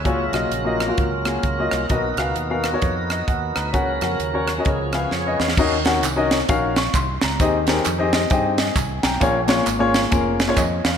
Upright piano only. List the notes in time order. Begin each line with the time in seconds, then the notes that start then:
0.04 C#3 A#3 F4 F#4 C#5
0.33 A#3 F4 F#4 D#5
0.65 A#3 F4 F#4 D#5
0.87 A#3 F4 F#4 A#4
1.25 A#3 F4 F#4 G#4
1.59 A#3 F4 F#4 D#5
1.90 B2 B3 F#4 A#4 D#5
2.18 B3 F#4 A#4 F5
2.50 B3 F#4 A#4 F5
2.72 B3 F#4 A#4 C#5
3.11 D#5
3.28 F#5
3.56 A#5
3.73 C#3 C#4 F#4 A#4 F#5
4.01 C#4 F#4 A#4 F#5
4.33 C#4 F#4 A#4 C#5
4.58 C#4 F#4 A#4 D#5
4.67 C#3
4.94 C#4 G#4 B4 F5
5.26 C#4 G#4 B4 D#5
5.58 D#3 C#4 D#4 F#4 A#4 D#5
5.85 C#4 D#4 F#4 A#4 F#5
6.16 C#4 D#4 F#4 A#4 D#5
6.48 C#4 D#4 F#4 A#4 F5
6.78 C#6
6.95 C6
7.24 A#5
7.40 D#3 C4 D#4 G4 G#4 D#5
7.68 C4 D#4 G4 G#4 A#4
7.98 C4 D#4 G4 G#4 D#5
8.13 D#5
8.30 C4 D#4 G4 G#4 D#5 G5
8.58 D#5
8.75 G#5
9.03 G5 A#5
9.20 A#2 A#3 C#4 F4 G#4 C#5
9.47 A#3 C#4 F4 G#4 C#5
9.79 A#3 C#4 F4 G#4 C#5
10.11 A#3 C#4 F4 G#4 A#4
10.47 A#3 C#4 F4 G#4 C#5
10.57 D#5
10.84 F5